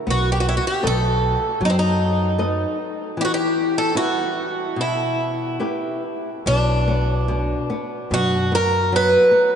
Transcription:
0.07 0.57 B1 medium
0.07 0.82 B3 medium
0.07 0.32 F#4 medium
0.32 0.40 G4 medium
0.40 0.48 F#4 medium
0.49 0.57 E4 medium
0.57 0.65 F#4 medium
0.67 0.86 G4 medium
0.83 1.34 B1 medium
0.83 1.45 A4 soft
0.83 1.45 B4 soft
0.83 1.46 D#5 soft
0.87 1.59 A4 medium
1.60 2.63 F#2 medium
1.60 2.37 F#3 medium
1.65 1.70 D#4 medium
1.70 1.76 C4 medium
1.79 2.78 D#4 medium
2.39 3.02 A4 soft
2.39 3.02 B4 soft
2.39 3.02 D#5 soft
3.17 3.93 E3 medium
3.17 3.24 G4 medium
3.25 3.32 F#4 medium
3.34 3.75 G4 medium
3.78 3.96 A4 medium
3.95 4.60 G3 soft
3.95 4.60 E4 soft
3.95 4.80 F#4 medium
3.95 4.61 B4 soft
4.76 5.59 B2 medium
4.81 6.02 E4 medium
5.60 6.28 E4 soft
5.60 6.28 G4 soft
5.60 6.29 B4 soft
6.46 7.53 B1 medium
6.46 7.27 B2 medium
6.46 8.16 D4 medium
6.88 7.27 B3 soft
7.28 7.68 B2 medium
7.70 8.10 B3 soft
8.11 9.15 F#2 medium
8.11 8.51 B2 medium
8.11 8.55 F#4 medium
8.52 8.91 B3 soft
8.52 8.95 A#4 medium
8.92 9.30 F#3 medium
8.92 9.49 B4 medium
9.31 9.55 B3 soft

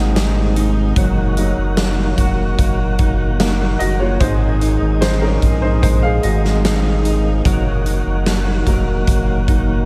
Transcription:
0.00 0.93 G#1 loud
0.00 0.97 G#2 medium
0.00 0.93 C3 medium
0.00 4.17 D#3 medium
0.00 0.92 G#3 medium
0.00 0.93 G#3 medium
0.00 0.96 G#3 medium
0.00 0.98 A#3 medium
0.00 0.14 C4 medium
0.00 0.99 C4 medium
0.00 0.56 D#4 medium
0.00 0.93 D#4 medium
0.00 0.99 D#4 medium
0.00 0.98 F#4 medium
0.00 0.97 G#4 medium
0.00 0.99 G#4 medium
0.00 0.99 A#4 medium
0.15 1.05 C4 medium
0.15 snare medium
0.15 closed hi-hat medium
0.56 1.37 D#4 medium
0.56 closed hi-hat medium
0.96 1.53 F#1 loud
0.96 4.21 F#3 medium
0.96 4.18 F#3 medium
0.96 4.18 A#3 medium
0.96 2.17 F#4 medium
0.96 4.18 F#4 medium
0.96 kick loud
0.96 closed hi-hat medium
1.37 3.38 F#3 medium
1.37 3.39 A#3 soft
1.37 2.98 D#4 medium
1.37 3.39 D#4 medium
1.37 closed hi-hat medium
1.58 2.14 F#1 medium
1.77 2.58 A#3 medium
1.77 snare loud
1.77 closed hi-hat medium
2.18 2.56 F1 medium
2.18 4.21 F#4 medium
2.18 kick medium
2.18 closed hi-hat medium
2.58 3.76 F#1 medium
2.58 3.38 A#3 medium
2.58 kick medium
2.58 closed hi-hat medium
2.98 3.80 D#4 medium
2.98 kick medium
2.98 closed hi-hat medium
3.40 3.76 F#3 soft
3.40 4.29 A#3 medium
3.40 3.77 A#3 soft
3.40 3.77 D#4 medium
3.40 snare loud
3.40 closed hi-hat medium
3.79 4.18 F#1 medium
3.79 4.61 D#4 medium
3.79 4.00 F#4 medium
3.79 4.01 D#5 medium
3.79 closed hi-hat medium
3.99 4.07 F4 medium
3.99 4.04 C#5 medium
4.20 4.78 G#1 loud
4.20 7.45 G#2 medium
4.20 9.85 D#3 medium
4.20 5.38 G#3 medium
4.20 7.42 G#3 medium
4.20 5.39 C4 soft
4.20 7.42 D#4 medium
4.20 4.99 D#4 medium
4.20 5.41 G#4 medium
4.20 4.99 C5 medium
4.20 kick loud
4.20 closed hi-hat medium
4.61 6.23 D#4 medium
4.61 closed hi-hat medium
4.81 5.38 G#1 medium
5.01 6.63 C4 medium
5.01 5.22 D#4 medium
5.01 5.22 C5 medium
5.01 snare loud
5.01 closed hi-hat medium
5.21 5.61 C#4 soft
5.21 5.64 A#4 medium
5.42 6.20 A#1 medium
5.42 7.45 G#4 medium
5.42 kick medium
5.42 closed hi-hat medium
5.62 5.82 D#4 medium
5.62 5.81 C5 medium
5.82 7.45 G#3 medium
5.82 6.02 D#4 medium
5.82 6.02 C5 medium
5.82 kick medium
5.82 closed hi-hat medium
6.03 6.23 G#4 medium
6.03 6.24 F5 medium
6.23 7.41 G#1 medium
6.23 7.04 D#4 medium
6.23 7.01 F#4 medium
6.23 7.00 D#5 medium
6.23 closed hi-hat medium
6.45 snare soft
6.64 7.53 C4 medium
6.64 snare loud
6.64 closed hi-hat medium
7.05 7.85 D#4 medium
7.05 closed hi-hat medium
7.45 8.02 F#1 medium
7.45 9.85 F#3 medium
7.45 9.85 A#3 medium
7.45 9.85 F#4 medium
7.45 8.65 A#4 medium
7.45 kick loud
7.45 closed hi-hat medium
7.86 9.47 D#4 medium
7.86 closed hi-hat medium
8.06 8.63 F#1 medium
8.26 9.06 A#3 medium
8.26 snare medium
8.26 closed hi-hat medium
8.66 9.05 F1 medium
8.66 9.85 F#3 soft
8.66 9.85 A#3 soft
8.66 9.85 D#4 medium
8.66 9.85 A#4 medium
8.66 kick medium
8.66 closed hi-hat medium
9.07 9.85 F#1 loud
9.07 9.85 A#3 medium
9.07 kick medium
9.07 closed hi-hat medium
9.48 9.85 D#4 medium
9.48 kick medium
9.48 closed hi-hat medium

